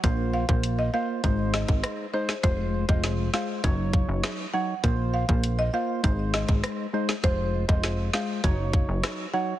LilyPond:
<<
  \new Staff \with { instrumentName = "Marimba" } { \time 4/4 \key bes \minor \tempo 4 = 100 r8 f''16 r8 ees''16 f''16 r8. ees''16 r8. c''16 r16 | c''16 r8 ees''16 r8 f''16 r4. r16 ges''16 r16 | r8 f''16 r8 ees''16 f''16 r8. ees''16 r4 r16 | c''16 r8 ees''16 r8 f''16 r4. r16 ges''16 r16 | }
  \new Staff \with { instrumentName = "Synth stab" } { \time 4/4 \key bes \minor <bes f' c''>8. <bes f' c''>8. <bes f' c''>8 <aes ees' c''>4. <aes ees' c''>16 r16 | <aes f' c''>8. <aes f' c''>8. <aes f' c''>8 <ges ees' des''>4. <ges ees' des''>16 r16 | <bes f' c''>8. <bes f' c''>8. <bes f' c''>8 <aes ees' c''>4. <aes ees' c''>16 r16 | <aes f' c''>8. <aes f' c''>8. <aes f' c''>8 <ges ees' des''>4. <ges ees' des''>16 r16 | }
  \new Staff \with { instrumentName = "Analog synth bass" } { \clef bass \time 4/4 \key bes \minor bes,,8. bes,,8. r8 aes,,8. aes,,16 r4 | f,,8. f,,8. r8 ges,,8. ges,,16 r4 | bes,,8. bes,,8. r8 aes,,8. aes,,16 r4 | f,,8. f,,8. r8 ges,,8. ges,,16 r4 | }
  \new DrumStaff \with { instrumentName = "Drums" } \drummode { \time 4/4 <hh bd>8. bd16 hh4 <hh bd>8 sn16 bd16 <hh ss>8. sn16 | <hh bd>8. bd16 <hh sn>8 sn8 <hh bd>8 bd8 <hh ss sn>4 | <hh bd>8. bd16 hh4 <hh bd>8 sn16 bd16 <hh ss>8. sn16 | <hh bd>8. bd16 <hh sn>8 sn8 <hh bd>8 bd8 <hh ss sn>4 | }
>>